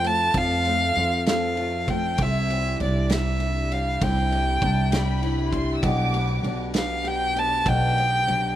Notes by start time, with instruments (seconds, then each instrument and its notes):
Already playing: upright bass F2, steel-string acoustic guitar F3 C4 F4
0.03 steel-string acoustic guitar A3, violin A5, ride
0.34 upright bass F2, steel-string acoustic guitar F3 F4, violin F5, kick, ride
0.65 steel-string acoustic guitar A3, ride
0.95 upright bass F2, steel-string acoustic guitar C4, ride
1.26 steel-string acoustic guitar A3, violin F5, snare, ride
1.57 steel-string acoustic guitar F4, ride
1.88 steel-string acoustic guitar A3, violin G5, kick, ride
2.18 upright bass C2, steel-string acoustic guitar C3 E4, violin E5, kick, ride
2.50 steel-string acoustic guitar G3, ride
2.80 upright bass C2, steel-string acoustic guitar D4, violin D5, ride
3.10 steel-string acoustic guitar G3, violin E5, snare, ride
3.40 ride
3.71 steel-string acoustic guitar G3, violin F5, ride
4.01 upright bass C2, steel-string acoustic guitar C3 E4, violin G5, kick, ride
4.32 steel-string acoustic guitar G3, ride
4.62 upright bass C2, steel-string acoustic guitar D4, violin section A5, kick, ride
4.92 steel-string acoustic guitar G3, violin section B5, snare, ride
5.22 steel-string acoustic guitar E4, ride
5.52 steel-string acoustic guitar G3, violin section C6, kick, ride
5.75 violin section E6
5.82 upright bass B1, steel-string acoustic guitar B2 G4, violin section D6, kick, ride
6.13 steel-string acoustic guitar B3, ride
6.43 upright bass B1, steel-string acoustic guitar D4, ride
6.74 steel-string acoustic guitar B3, violin F5, snare, ride
7.04 steel-string acoustic guitar G4, violin G5, ride
7.35 steel-string acoustic guitar B3, violin A5, ride
7.66 upright bass B1, steel-string acoustic guitar B2 G4, violin G5, kick, ride
7.96 steel-string acoustic guitar B3, ride
8.27 upright bass B1, steel-string acoustic guitar D4, ride